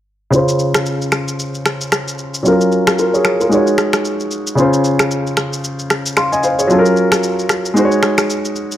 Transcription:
0.31 2.40 C#3 medium
0.31 2.41 C#4 medium
0.31 2.42 F4 medium
0.31 shaker medium
0.36 2.43 C5 medium
0.48 shaker medium
0.59 shaker soft
0.74 finger snap medium
0.74 cross-stick loud
0.74 shaker medium
0.86 shaker medium
1.02 shaker medium
1.12 finger snap medium
1.12 cross-stick medium
1.12 shaker soft
1.28 shaker medium
1.39 shaker medium
1.55 shaker medium
1.66 finger snap medium
1.66 cross-stick medium
1.66 shaker soft
1.81 shaker medium
1.92 finger snap medium
1.92 cross-stick loud
1.92 shaker medium
2.08 shaker medium
2.18 shaker medium
2.34 shaker medium
2.43 3.48 F#3 medium
2.43 3.49 C#4 medium
2.43 2.98 F4 medium
2.43 shaker medium
2.48 2.97 A#4 medium
2.61 shaker medium
2.72 shaker soft
2.87 finger snap medium
2.87 cross-stick loud
2.87 shaker medium
2.99 3.14 F4 medium
2.99 3.13 A#4 medium
2.99 shaker medium
3.14 3.39 G#4 medium
3.14 3.39 C#5 medium
3.14 shaker medium
3.25 finger snap medium
3.25 cross-stick medium
3.25 shaker soft
3.40 3.66 F4 medium
3.40 3.66 A#4 medium
3.40 shaker medium
3.49 4.54 G#3 medium
3.49 4.55 D#4 medium
3.49 4.56 F#4 medium
3.49 shaker medium
3.54 4.57 C#5 medium
3.67 shaker medium
3.78 finger snap medium
3.78 cross-stick medium
3.78 shaker soft
3.93 finger snap medium
3.93 cross-stick medium
3.93 shaker medium
4.05 shaker medium
4.20 shaker medium
4.31 shaker medium
4.47 shaker medium
4.55 6.65 C#3 medium
4.55 6.66 C#4 medium
4.55 6.67 F4 medium
4.55 shaker medium
4.60 6.15 C5 medium
4.73 shaker medium
4.84 shaker soft
4.99 finger snap medium
4.99 cross-stick loud
4.99 shaker medium
5.11 shaker medium
5.27 shaker medium
5.37 finger snap medium
5.37 cross-stick medium
5.37 shaker soft
5.53 shaker medium
5.64 shaker medium
5.79 shaker medium
5.90 finger snap medium
5.90 cross-stick medium
5.90 shaker soft
6.06 shaker medium
6.17 6.32 F5 medium
6.17 6.32 C6 medium
6.17 finger snap medium
6.17 cross-stick medium
6.17 shaker medium
6.32 6.43 D#5 medium
6.32 6.43 G#5 medium
6.32 shaker medium
6.43 6.59 C5 medium
6.43 6.58 F5 medium
6.43 shaker medium
6.59 6.85 G#4 medium
6.59 6.84 C#5 medium
6.59 shaker medium
6.67 7.73 F#3 medium
6.67 7.74 C#4 medium
6.67 7.75 F4 medium
6.67 shaker medium
6.72 6.79 A4 medium
6.79 7.79 A#4 medium
6.86 shaker medium
6.97 shaker soft
7.12 finger snap medium
7.12 cross-stick loud
7.12 shaker medium
7.23 shaker medium
7.39 shaker medium
7.49 finger snap medium
7.49 cross-stick medium
7.49 shaker soft
7.65 shaker medium
7.74 8.77 G#3 medium
7.74 8.77 D#4 medium
7.74 8.77 F#4 medium
7.74 shaker medium
7.79 7.85 C5 medium
7.85 8.77 C#5 medium
7.92 shaker medium
8.03 finger snap medium
8.03 cross-stick medium
8.03 shaker soft
8.18 finger snap medium
8.18 cross-stick medium
8.18 shaker medium
8.30 shaker medium
8.45 shaker medium
8.56 shaker soft
8.72 shaker medium

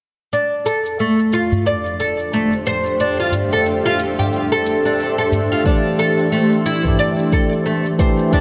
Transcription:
0.32 5.66 F2 medium
0.32 0.65 D4 medium
0.32 shaker soft
0.54 8.40 D4 medium
0.62 8.40 A3 medium
0.66 0.85 A4 medium
0.66 shaker medium
0.86 shaker soft
0.99 1.18 A3 medium
0.99 shaker soft
1.11 8.40 G4 medium
1.11 8.40 C5 medium
1.19 shaker soft
1.33 1.65 F4 medium
1.33 shaker medium
1.52 udu medium
1.52 shaker soft
1.66 1.98 D5 medium
1.66 shaker soft
1.86 shaker soft
1.94 8.40 E5 medium
2.00 2.18 A4 medium
2.00 shaker medium
2.19 shaker soft
2.33 2.52 A3 medium
2.33 shaker soft
2.53 shaker soft
2.66 2.98 C5 medium
2.66 shaker medium
2.86 shaker soft
3.00 3.19 D4 medium
3.00 shaker soft
3.20 3.33 F4 medium
3.32 udu medium
3.32 shaker medium
3.52 3.66 A4 medium
3.52 shaker soft
3.66 shaker soft
3.86 3.99 F4 medium
3.86 shaker soft
3.99 shaker medium
4.19 4.27 G4 medium
4.19 udu medium
4.19 shaker soft
4.33 shaker soft
4.52 4.84 A4 medium
4.52 shaker soft
4.66 shaker medium
4.85 5.17 D4 medium
4.85 shaker soft
5.00 shaker soft
5.18 5.50 A4 medium
5.18 shaker soft
5.32 udu medium
5.32 shaker medium
5.52 5.65 F4 medium
5.52 shaker soft
5.64 6.80 E3 medium
5.64 6.81 A3 medium
5.64 5.98 D4 medium
5.64 6.81 D4 medium
5.64 6.82 G4 medium
5.64 kick loud
5.64 shaker soft
5.99 6.18 A4 medium
5.99 shaker medium
6.19 shaker soft
6.32 6.51 A3 medium
6.32 shaker soft
6.52 shaker soft
6.66 6.98 E4 medium
6.66 shaker medium
6.84 7.96 E3 medium
6.84 7.96 A3 medium
6.84 7.97 D4 medium
6.84 7.98 G4 medium
6.84 kick medium
6.84 udu medium
6.84 shaker soft
6.99 7.31 D5 medium
6.99 shaker soft
7.19 shaker soft
7.32 7.52 A4 medium
7.32 kick loud
7.32 shaker medium
7.53 shaker soft
7.66 7.85 A3 medium
7.66 shaker soft
7.86 shaker soft
7.99 8.29 E3 medium
7.99 8.30 A3 medium
7.99 8.30 D4 medium
7.99 8.30 G4 medium
7.99 8.31 C5 medium
7.99 kick loud
7.99 shaker medium
8.19 shaker soft
8.31 8.40 E3 medium
8.31 8.40 A3 medium
8.31 8.40 D4 medium
8.31 8.40 G4 medium
8.31 kick loud
8.31 shaker soft

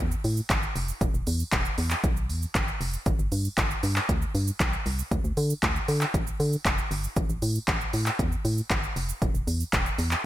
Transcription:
0.00 0.15 E2 loud
0.11 shaker medium
0.24 0.41 A2 loud
0.24 open hi-hat medium
0.24 shaker soft
0.37 shaker medium
0.50 0.67 G1 medium
0.50 kick loud
0.50 clap loud
0.50 closed hi-hat medium
0.50 shaker medium
0.63 shaker medium
0.76 0.92 F1 loud
0.76 open hi-hat medium
0.76 shaker medium
0.88 shaker medium
1.01 1.09 E1 loud
1.01 kick loud
1.01 closed hi-hat medium
1.01 shaker medium
1.14 1.23 E1 loud
1.14 shaker medium
1.27 1.44 E2 loud
1.27 open hi-hat medium
1.27 shaker medium
1.40 shaker medium
1.52 1.69 E1 loud
1.52 kick loud
1.52 clap loud
1.52 closed hi-hat medium
1.52 shaker medium
1.65 shaker medium
1.78 1.95 E2 loud
1.78 open hi-hat medium
1.78 shaker medium
1.91 clap medium
1.91 shaker medium
2.04 2.31 B1 loud
2.04 kick loud
2.04 closed hi-hat medium
2.04 shaker medium
2.17 shaker medium
2.29 2.46 E2 loud
2.29 open hi-hat medium
2.29 shaker soft
2.42 shaker medium
2.55 2.72 G1 medium
2.55 kick loud
2.55 clap loud
2.55 closed hi-hat medium
2.55 shaker medium
2.68 shaker medium
2.81 2.97 F1 loud
2.81 open hi-hat medium
2.81 shaker medium
2.93 shaker medium
3.06 3.15 G1 loud
3.06 kick loud
3.06 closed hi-hat medium
3.06 shaker medium
3.19 3.28 G1 loud
3.19 shaker medium
3.32 3.49 G2 medium
3.32 open hi-hat medium
3.32 shaker medium
3.45 shaker medium
3.58 3.74 G1 medium
3.58 kick loud
3.58 clap loud
3.58 closed hi-hat medium
3.58 shaker medium
3.71 shaker medium
3.83 4.00 G2 loud
3.83 open hi-hat medium
3.83 shaker medium
3.96 clap medium
3.96 shaker medium
4.09 4.26 D2 loud
4.09 kick loud
4.09 closed hi-hat medium
4.09 shaker medium
4.22 shaker medium
4.35 4.51 G2 loud
4.35 open hi-hat medium
4.35 shaker soft
4.47 shaker medium
4.60 4.77 B1 loud
4.60 kick loud
4.60 clap loud
4.60 closed hi-hat medium
4.60 shaker medium
4.73 shaker medium
4.86 5.03 C2 loud
4.86 open hi-hat medium
4.86 shaker soft
4.99 shaker medium
5.11 5.20 D2 loud
5.11 kick loud
5.11 closed hi-hat medium
5.11 shaker medium
5.24 5.33 D2 loud
5.24 shaker medium
5.37 5.54 D3 loud
5.37 open hi-hat medium
5.37 shaker medium
5.50 shaker medium
5.63 5.80 D2 loud
5.63 kick loud
5.63 clap loud
5.63 closed hi-hat medium
5.63 shaker medium
5.76 shaker medium
5.88 6.05 D3 loud
5.88 open hi-hat medium
5.88 shaker medium
6.01 clap medium
6.01 shaker medium
6.14 6.31 A1 loud
6.14 kick loud
6.14 closed hi-hat medium
6.14 shaker medium
6.27 shaker medium
6.40 6.56 D3 loud
6.40 open hi-hat medium
6.40 shaker soft
6.53 shaker medium
6.65 6.82 F1 loud
6.65 kick loud
6.65 clap loud
6.65 closed hi-hat medium
6.65 shaker medium
6.78 shaker medium
6.91 7.08 G1 loud
6.91 open hi-hat medium
6.91 shaker medium
7.04 shaker medium
7.16 7.25 A1 loud
7.16 kick loud
7.16 closed hi-hat medium
7.16 shaker medium
7.29 7.38 A1 loud
7.29 shaker medium
7.42 7.59 A2 loud
7.42 open hi-hat medium
7.42 shaker medium
7.55 shaker medium
7.68 7.85 A1 loud
7.68 kick loud
7.68 clap loud
7.68 closed hi-hat medium
7.68 shaker medium
7.81 shaker medium
7.93 8.10 A2 medium
7.93 open hi-hat medium
7.93 shaker medium
8.06 clap medium
8.06 shaker medium
8.19 8.36 E2 loud
8.19 kick loud
8.19 closed hi-hat medium
8.19 shaker medium
8.32 shaker medium
8.45 8.62 A2 loud
8.45 open hi-hat medium
8.45 shaker soft
8.58 shaker medium
8.70 8.87 G1 loud
8.70 kick loud
8.70 clap loud
8.70 closed hi-hat medium
8.70 shaker medium
8.83 shaker medium
8.96 9.13 F1 loud
8.96 open hi-hat medium
8.96 shaker soft
9.09 shaker medium
9.22 9.30 E1 loud
9.22 kick loud
9.22 closed hi-hat medium
9.22 shaker medium
9.34 9.43 E1 loud
9.34 shaker medium
9.47 9.64 E2 loud
9.47 open hi-hat medium
9.47 shaker medium
9.60 shaker medium
9.73 9.90 E1 loud
9.73 kick loud
9.73 clap loud
9.73 closed hi-hat medium
9.73 shaker medium
9.86 shaker medium
9.98 10.15 E2 loud
9.98 open hi-hat medium
9.98 shaker medium
10.11 clap medium
10.11 shaker medium

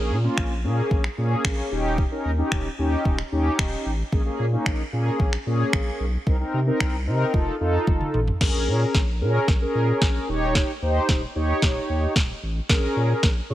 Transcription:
0.00 0.12 A#1 loud
0.00 0.17 A#3 medium
0.00 0.17 C#4 medium
0.00 0.17 G#4 medium
0.11 0.28 A#2 loud
0.24 0.53 A#3 medium
0.24 0.53 C#4 medium
0.24 0.54 F4 loud
0.37 0.66 A#1 loud
0.37 finger snap loud
0.37 kick medium
0.64 0.82 A#2 loud
0.64 1.03 A#3 medium
0.64 1.03 C#4 medium
0.64 1.04 G#4 medium
0.91 1.08 A#1 medium
0.91 kick loud
1.04 finger snap medium
1.17 1.35 A#2 medium
1.17 1.71 A#3 medium
1.17 1.70 C#4 medium
1.17 1.72 G#4 medium
1.45 1.62 A#1 medium
1.45 finger snap loud
1.45 kick loud
1.71 2.06 D#1 medium
1.71 2.03 C#4 medium
1.71 2.03 D#4 medium
1.71 2.04 G4 loud
1.98 kick loud
2.11 2.31 C#4 medium
2.11 2.31 D#4 medium
2.11 2.31 A#4 medium
2.25 2.42 D#2 loud
2.38 2.68 C#4 medium
2.38 2.68 D#4 medium
2.38 2.68 G4 loud
2.52 2.69 D#1 loud
2.52 finger snap loud
2.52 kick loud
2.78 2.96 D#2 medium
2.78 3.18 C#4 medium
2.78 3.18 D#4 medium
2.78 3.18 G4 loud
3.05 3.23 D#1 loud
3.05 kick loud
3.19 finger snap medium
3.32 3.50 D#2 loud
3.32 3.91 C#4 medium
3.32 3.91 D#4 medium
3.32 3.91 G4 loud
3.59 3.76 D#1 loud
3.59 finger snap loud
3.59 kick loud
3.86 4.03 A1 medium
4.12 4.30 A#1 loud
4.12 4.22 A#3 medium
4.12 4.22 C#4 medium
4.12 4.22 G#4 medium
4.12 kick loud
4.26 4.45 A#3 medium
4.26 4.46 C#4 medium
4.26 4.46 G#4 medium
4.39 4.57 A#2 loud
4.52 4.82 A#3 medium
4.52 4.82 C#4 medium
4.52 4.82 D#4 medium
4.66 4.83 A#1 medium
4.66 finger snap loud
4.66 kick loud
4.92 5.10 A#2 medium
4.92 5.32 A#3 medium
4.92 5.32 C#4 medium
4.92 5.32 G#4 medium
5.20 5.37 A#1 loud
5.20 kick loud
5.33 finger snap medium
5.46 5.64 A#2 loud
5.46 6.05 A#3 medium
5.46 6.05 C#4 medium
5.46 6.05 G#4 loud
5.73 5.91 A#1 medium
5.73 finger snap loud
5.73 kick loud
6.00 6.17 B1 medium
6.27 6.44 C2 loud
6.27 6.36 C4 medium
6.27 6.37 D#4 medium
6.27 6.37 A#4 loud
6.27 kick loud
6.40 6.60 C4 medium
6.40 6.60 D#4 medium
6.40 6.60 A#4 medium
6.54 6.71 C3 loud
6.67 6.96 C4 medium
6.67 6.96 D#4 medium
6.67 6.97 A#4 loud
6.80 7.09 C2 loud
6.80 finger snap loud
6.80 kick loud
7.07 7.24 C3 medium
7.07 7.34 C4 medium
7.07 7.32 D#4 medium
7.07 7.34 A#4 loud
7.33 7.51 F1 loud
7.33 7.55 D#4 medium
7.33 7.55 F4 medium
7.33 7.55 A4 loud
7.33 kick loud
7.60 7.78 F2 loud
7.60 8.19 D#4 medium
7.60 8.20 F4 medium
7.60 8.20 A4 loud
7.87 8.05 F1 medium
7.87 kick loud
7.87 high tom medium
8.01 mid tom medium
8.14 8.32 A1 loud
8.14 mid tom medium
8.28 floor tom medium
8.41 8.69 A#1 loud
8.41 9.00 C#4 medium
8.41 9.00 G#4 medium
8.41 9.00 A#4 medium
8.41 kick loud
8.41 snare medium
8.41 crash medium
8.68 8.85 A#2 loud
8.95 9.23 A#1 loud
8.95 kick loud
8.95 snare medium
9.21 9.39 A#2 loud
9.21 9.51 C#4 medium
9.21 9.51 G#4 medium
9.21 9.51 A#4 loud
9.48 9.66 A#1 loud
9.48 kick loud
9.48 snare medium
9.61 10.28 C#4 medium
9.61 10.29 G#4 medium
9.61 10.29 A#4 medium
9.75 9.92 A#2 medium
10.02 10.19 A#1 loud
10.02 kick loud
10.02 snare medium
10.28 10.63 D#1 medium
10.28 10.71 D#4 medium
10.28 10.71 G4 medium
10.28 10.71 C#5 loud
10.55 kick loud
10.55 snare medium
10.82 10.99 D#2 loud
10.82 11.21 D#4 medium
10.82 11.21 G4 medium
10.82 11.22 C5 medium
11.09 11.26 D#1 loud
11.09 kick loud
11.09 snare medium
11.35 11.53 D#2 medium
11.35 12.14 D#4 medium
11.35 12.14 G4 medium
11.35 12.14 C#5 medium
11.62 11.80 D#1 loud
11.62 kick loud
11.62 snare medium
11.89 12.07 D#2 medium
12.16 12.33 D#1 medium
12.16 kick loud
12.16 snare medium
12.43 12.60 A1 medium
12.69 12.87 A#1 loud
12.69 13.28 C#4 medium
12.69 13.28 G#4 medium
12.69 13.29 A#4 medium
12.69 kick loud
12.69 snare medium
12.96 13.14 A#2 medium
13.23 13.41 A#1 medium
13.23 kick loud
13.23 snare medium
13.49 13.54 A#2 loud
13.49 13.54 C#4 medium
13.49 13.54 G#4 medium
13.49 13.54 C#5 medium

